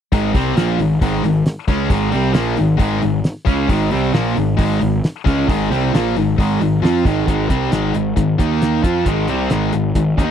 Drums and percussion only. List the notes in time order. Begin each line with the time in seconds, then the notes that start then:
0.12 kick, open hi-hat
0.35 kick, snare, open hi-hat
0.57 snare, open hi-hat
0.79 open hi-hat
1.01 kick, open hi-hat
1.24 open hi-hat
1.46 snare, open hi-hat
1.68 kick, snare, open hi-hat
1.90 kick, open hi-hat
2.12 open hi-hat
2.34 snare, open hi-hat
2.57 open hi-hat
2.79 kick, open hi-hat
3.02 open hi-hat
3.24 snare, open hi-hat
3.47 kick, open hi-hat
3.69 kick, open hi-hat
3.91 open hi-hat
4.14 snare, open hi-hat
4.37 open hi-hat
4.59 kick, open hi-hat
4.81 open hi-hat
5.04 snare, open hi-hat
5.26 kick, open hi-hat
5.49 kick, open hi-hat
5.72 snare, open hi-hat
5.95 snare, open hi-hat
6.17 open hi-hat
6.38 kick, open hi-hat
6.61 open hi-hat
6.84 snare, open hi-hat
7.05 kick, open hi-hat
7.28 kick, closed hi-hat
7.50 kick, closed hi-hat
7.72 snare, closed hi-hat
7.94 closed hi-hat
8.17 kick, closed hi-hat
8.39 kick, closed hi-hat
8.62 snare, closed hi-hat
8.84 kick, closed hi-hat
9.06 kick, closed hi-hat
9.28 closed hi-hat
9.50 snare, closed hi-hat
9.73 closed hi-hat
9.95 kick, closed hi-hat
10.18 kick, closed hi-hat